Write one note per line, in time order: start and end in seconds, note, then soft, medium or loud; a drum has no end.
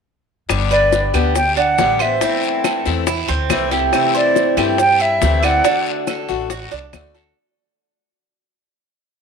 0.49 1.10 G1 medium
0.49 1.13 D3 medium
0.49 1.13 G3 medium
0.49 1.13 B3 medium
0.49 1.13 D4 medium
0.49 1.12 G4 medium
0.49 high bongo medium
0.49 long guiro medium
0.49 claves medium
0.49 maracas medium
0.71 1.13 B4 medium
0.71 1.12 D5 loud
0.71 maracas soft
0.92 high bongo medium
0.92 short guiro medium
0.92 maracas medium
1.14 1.75 D2 medium
1.14 1.35 G3 medium
1.14 1.35 B3 medium
1.14 1.35 D4 medium
1.14 1.35 G4 medium
1.14 1.56 G4 medium
1.14 short guiro medium
1.14 claves medium
1.14 maracas soft
1.35 1.56 G5 loud
1.35 muted steel-string acoustic guitar stroke medium
1.35 high bongo medium
1.35 long guiro medium
1.35 maracas medium
1.57 1.99 D4 medium
1.57 2.03 F#5 medium
1.57 maracas soft
1.78 2.16 A1 medium
1.78 1.99 D3 medium
1.78 1.99 G3 medium
1.78 2.00 B3 medium
1.78 2.00 D4 medium
1.78 1.99 G4 medium
1.78 high bongo medium
1.78 low bongo medium
1.78 short guiro medium
1.78 maracas medium
1.99 2.22 B3 soft
1.99 2.21 D4 soft
1.99 2.21 G4 soft
1.99 2.21 C5 medium
1.99 2.44 E5 medium
1.99 short guiro medium
1.99 claves medium
1.99 maracas soft
2.21 3.07 E3 medium
2.21 2.87 A3 medium
2.21 2.63 C4 medium
2.21 2.86 C4 medium
2.21 2.85 E4 medium
2.21 high bongo medium
2.21 long guiro medium
2.21 maracas medium
2.43 maracas soft
2.64 3.06 A4 medium
2.64 high bongo medium
2.64 short guiro medium
2.64 claves medium
2.64 maracas medium
2.85 3.26 E2 medium
2.85 3.06 A3 medium
2.85 3.07 C4 medium
2.85 3.06 E4 medium
2.85 high bongo soft
2.85 short guiro medium
2.85 maracas soft
3.07 3.28 E4 medium
3.07 muted steel-string acoustic guitar stroke medium
3.07 high bongo medium
3.07 long guiro medium
3.07 maracas medium
3.28 3.49 D2 medium
3.28 3.70 C4 medium
3.28 high bongo soft
3.28 maracas soft
3.50 3.88 C2 medium
3.50 3.71 E3 medium
3.50 3.71 A3 medium
3.50 3.71 C4 medium
3.50 3.70 E4 medium
3.50 high bongo medium
3.50 low bongo medium
3.50 short guiro medium
3.50 claves medium
3.50 maracas medium
3.71 3.92 A3 soft
3.71 3.93 C4 soft
3.71 3.92 E4 soft
3.71 4.13 G4 medium
3.71 high bongo soft
3.71 short guiro medium
3.71 maracas soft
3.93 4.56 C3 medium
3.93 4.57 E3 medium
3.93 4.58 A3 medium
3.93 4.57 C4 medium
3.93 4.56 E4 medium
3.93 high bongo medium
3.93 long guiro medium
3.93 claves medium
3.93 maracas medium
4.15 4.56 C5 medium
4.15 4.55 D5 loud
4.15 maracas soft
4.35 high bongo medium
4.35 short guiro medium
4.35 maracas medium
4.57 5.18 G2 medium
4.57 4.78 E3 medium
4.57 4.78 A3 medium
4.57 4.78 C4 medium
4.57 4.78 E4 medium
4.57 4.99 G4 medium
4.57 short guiro medium
4.57 claves medium
4.57 maracas soft
4.78 5.03 G5 loud
4.78 muted steel-string acoustic guitar stroke medium
4.78 high bongo medium
4.78 long guiro medium
4.78 maracas medium
5.00 5.42 E4 medium
5.00 5.46 E5 medium
5.00 maracas soft
5.21 5.60 D2 medium
5.21 5.42 C3 medium
5.21 5.42 E3 medium
5.21 5.43 A3 medium
5.21 5.43 C4 medium
5.21 5.42 E4 medium
5.21 high bongo medium
5.21 low bongo medium
5.21 short guiro medium
5.21 maracas medium
5.43 5.64 A3 soft
5.43 5.64 C4 soft
5.43 5.64 E4 soft
5.43 5.64 D5 medium
5.43 5.87 F#5 loud
5.43 short guiro medium
5.43 claves medium
5.43 maracas soft
5.64 6.28 D3 medium
5.64 6.28 A3 medium
5.64 6.06 D4 medium
5.64 6.28 D4 medium
5.64 6.27 F#4 medium
5.64 high bongo medium
5.64 long guiro medium
5.64 maracas medium
5.86 maracas soft
6.07 6.49 A4 medium
6.07 high bongo medium
6.07 short guiro medium
6.07 claves medium
6.07 maracas medium
6.29 6.69 A1 medium
6.29 6.49 A3 medium
6.29 6.50 D4 medium
6.29 6.49 F#4 medium
6.29 high bongo soft
6.29 short guiro medium
6.29 maracas soft
6.50 6.71 F#4 medium
6.50 muted steel-string acoustic guitar stroke medium
6.50 high bongo medium
6.50 long guiro medium
6.50 maracas medium
6.71 6.92 C2 medium
6.71 7.13 D4 medium
6.71 high bongo soft
6.71 maracas soft
6.93 7.31 D2 medium
6.93 7.14 D3 medium
6.93 7.14 A3 medium
6.93 7.14 D4 medium
6.93 7.13 F#4 medium
6.93 high bongo medium
6.93 low bongo medium
6.93 short guiro medium
6.93 claves medium
6.93 maracas medium
7.14 7.36 A3 soft
7.14 7.36 D4 soft
7.14 7.35 F#4 soft
7.14 7.36 A4 medium
7.14 high bongo soft
7.14 short guiro medium
7.14 maracas soft